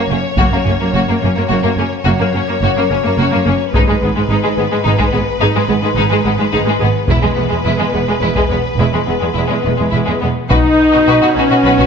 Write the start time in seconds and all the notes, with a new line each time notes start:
Already playing: C#5
0.10 F#1 F#2 A#3 C#4
0.37 F#1 F#2 A#3 F#4, taiko
0.52 F#2 A#3
0.65 F#1 F#2 C#4
0.69 A#3
0.80 F#2 A#3
0.84 A#3
0.93 F#1 F#2 A#3 F#4
1.08 F#2 A#3
1.22 F#1 F#2 A#3 C#4
1.36 F#2 A#3
1.48 F#1 F#2 A#3 F#4
1.63 F#2 A#3
1.78 F#1 F#2 A#3 C#4
2.04 F#1 F#2 A#3 F#4 C#5
2.20 F#2 A#3
2.34 F#1 F#2 A#3 C#4
2.48 F#2 A#3
2.63 F#1 F#2 A#3 F#4
2.76 F#2 A#3
2.90 F#1 F#2 A#3 C#4
3.03 F#2 A#3
3.17 F#1 F#2 A#3 F#4
3.31 F#2 A#3
3.46 F#1 F#2 A#3 C#4
3.74 G#1 G#2 G#3 D#4 B4, taiko
3.88 G#2 G#3
4.02 G#1 G#2 G#3 B3
4.16 G#2 G#3
4.30 G#1 G#2 G#3 D#4
4.44 G#2 G#3
4.58 G#1 G#2 G#3 B3
4.71 G#2 G#3
4.84 G#1 G#2 G#3 D#4
4.98 G#2 G#3, taiko
5.12 G#1 G#2 G#3 B3
5.40 G#1 G#2 G#3 D#4
5.55 G#2 G#3
5.69 G#1 G#2 G#3 B3
5.83 G#2 G#3
5.96 G#1 G#2 G#3 D#4
6.10 G#2 G#3
6.25 G#1 G#2 G#3 B3
6.39 G#2 G#3
6.52 G#1 G#2 G#3 D#4
6.66 G#2 G#3
6.79 G#1 G#2 G#3 B3
7.08 E1 E2 G#3 E4 B4, taiko
7.22 E2 G#3
7.36 E1 E2 G#3 B3
7.49 E2 G#3
7.65 E1 E2 G#3 E4
7.79 E2 G#3
7.92 E1 E2 G#3 B3
8.08 E2 G#3
8.22 E1 E2 G#3 E4
8.36 E2 G#3, taiko
8.50 E1 E2 G#3 B3
8.79 E1 E2 G#3 E4
8.93 E2 G#3
9.07 E1 E2 G#3 B3
9.21 E2 G#3
9.34 E1 E2 G#3 E4
9.49 E2 G#3
9.54 G#3
9.63 E1 E2 B3
9.67 G#3
9.77 E2 G#3
9.91 E1 E2 E4
9.95 G#3
10.06 E2 G#3
10.21 E1 E2 G#3 B3
10.50 B1 B2 D#4 F#4 B4, taiko
10.92 B2 F#4
11.07 B1 B2 F#4 B4
11.21 B2 F#4
11.35 B1 B2 C#4 D#4 F#4
11.50 B2 F#4
11.64 B1 B2 F#4 B4
11.78 B2 F#4, taiko